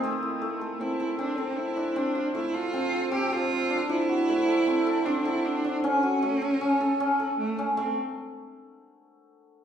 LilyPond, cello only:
\new Staff \with { instrumentName = "Cello" } { \time 5/4 \key a \minor \tempo 4 = 155 a2 e'4 d'8 c'8 e'4 | d'4 e'8 f'4. g'8 f'4. | e'2. d'8 e'8 d'4 | cis'1 a4 |
c'8 r1 r8 | }